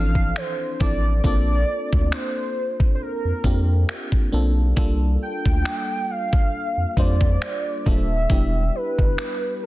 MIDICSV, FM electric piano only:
0, 0, Header, 1, 2, 480
1, 0, Start_track
1, 0, Tempo, 882353
1, 674, Time_signature, 4, 2, 24, 8
1, 5255, End_track
2, 0, Start_track
2, 0, Title_t, "FM electric piano"
2, 0, Program_c, 0, 5
2, 0, Control_c, 0, 64, 127
2, 0, Note_on_c, 0, 52, 60
2, 0, Note_on_c, 0, 53, 70
2, 0, Note_on_c, 0, 60, 58
2, 0, Note_on_c, 0, 62, 58
2, 0, Note_on_c, 0, 69, 74
2, 281, Note_off_c, 0, 53, 0
2, 283, Note_off_c, 0, 60, 0
2, 283, Note_off_c, 0, 62, 0
2, 285, Note_off_c, 0, 52, 0
2, 286, Note_off_c, 0, 69, 0
2, 433, Note_on_c, 0, 53, 63
2, 435, Note_on_c, 0, 60, 57
2, 438, Note_on_c, 0, 62, 56
2, 440, Note_on_c, 0, 64, 57
2, 443, Note_on_c, 0, 69, 66
2, 601, Note_off_c, 0, 53, 0
2, 602, Note_off_c, 0, 60, 0
2, 603, Note_off_c, 0, 62, 0
2, 604, Note_off_c, 0, 64, 0
2, 605, Note_off_c, 0, 69, 0
2, 673, Note_on_c, 0, 58, 71
2, 675, Note_on_c, 0, 60, 67
2, 678, Note_on_c, 0, 62, 62
2, 680, Note_on_c, 0, 65, 66
2, 681, Control_c, 0, 64, 0
2, 682, Note_on_c, 0, 69, 75
2, 783, Control_c, 0, 64, 127
2, 1322, Note_off_c, 0, 58, 0
2, 1323, Note_off_c, 0, 60, 0
2, 1325, Note_off_c, 0, 62, 0
2, 1326, Note_off_c, 0, 65, 0
2, 1327, Note_off_c, 0, 69, 0
2, 1873, Note_on_c, 0, 58, 66
2, 1875, Note_on_c, 0, 60, 61
2, 1877, Note_on_c, 0, 62, 61
2, 1880, Note_on_c, 0, 65, 64
2, 1882, Note_on_c, 0, 67, 74
2, 2201, Note_off_c, 0, 58, 0
2, 2202, Note_off_c, 0, 60, 0
2, 2203, Note_off_c, 0, 62, 0
2, 2205, Note_off_c, 0, 65, 0
2, 2206, Note_off_c, 0, 67, 0
2, 2352, Note_on_c, 0, 58, 75
2, 2355, Note_on_c, 0, 60, 64
2, 2357, Note_on_c, 0, 62, 70
2, 2359, Note_on_c, 0, 65, 66
2, 2362, Note_on_c, 0, 69, 82
2, 2520, Note_off_c, 0, 58, 0
2, 2521, Note_off_c, 0, 60, 0
2, 2522, Note_off_c, 0, 62, 0
2, 2524, Note_off_c, 0, 65, 0
2, 2525, Note_off_c, 0, 69, 0
2, 2591, Note_on_c, 0, 55, 83
2, 2593, Note_on_c, 0, 58, 75
2, 2596, Note_on_c, 0, 62, 75
2, 2598, Note_on_c, 0, 65, 72
2, 2601, Control_c, 0, 64, 0
2, 2601, Note_on_c, 0, 69, 91
2, 2697, Control_c, 0, 64, 127
2, 3241, Note_off_c, 0, 55, 0
2, 3242, Note_off_c, 0, 58, 0
2, 3244, Note_off_c, 0, 62, 0
2, 3245, Note_off_c, 0, 65, 0
2, 3246, Note_off_c, 0, 69, 0
2, 3793, Note_on_c, 0, 55, 70
2, 3796, Note_on_c, 0, 58, 59
2, 3798, Note_on_c, 0, 62, 63
2, 3800, Note_on_c, 0, 65, 63
2, 3803, Note_on_c, 0, 72, 72
2, 4121, Note_off_c, 0, 55, 0
2, 4123, Note_off_c, 0, 58, 0
2, 4124, Note_off_c, 0, 62, 0
2, 4125, Note_off_c, 0, 65, 0
2, 4126, Note_off_c, 0, 72, 0
2, 4274, Note_on_c, 0, 55, 59
2, 4276, Note_on_c, 0, 58, 57
2, 4278, Note_on_c, 0, 62, 56
2, 4281, Note_on_c, 0, 65, 58
2, 4283, Note_on_c, 0, 69, 69
2, 4441, Note_off_c, 0, 55, 0
2, 4442, Note_off_c, 0, 58, 0
2, 4443, Note_off_c, 0, 62, 0
2, 4444, Note_off_c, 0, 65, 0
2, 4446, Note_off_c, 0, 69, 0
2, 4512, Note_on_c, 0, 55, 66
2, 4514, Note_on_c, 0, 59, 60
2, 4518, Note_on_c, 0, 62, 61
2, 4519, Note_on_c, 0, 64, 63
2, 4521, Control_c, 0, 64, 0
2, 4523, Note_on_c, 0, 67, 75
2, 4604, Control_c, 0, 64, 127
2, 5162, Note_off_c, 0, 55, 0
2, 5163, Note_off_c, 0, 59, 0
2, 5165, Note_off_c, 0, 62, 0
2, 5165, Note_off_c, 0, 64, 0
2, 5167, Note_off_c, 0, 67, 0
2, 5255, End_track
0, 0, End_of_file